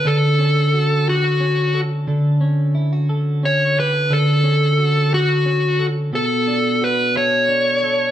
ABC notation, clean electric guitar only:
X:1
M:6/8
L:1/16
Q:3/8=59
K:D
V:1 name="Clean electric guitar"
[D,CFA]2 C2 F2 G A C2 A2 | [D,A]2 C2 E F A2 C2 G A | [D,A]2 C2 F2 G A C2 A2 | [B,,A]2 D2 F2 A2 D2 A2 |]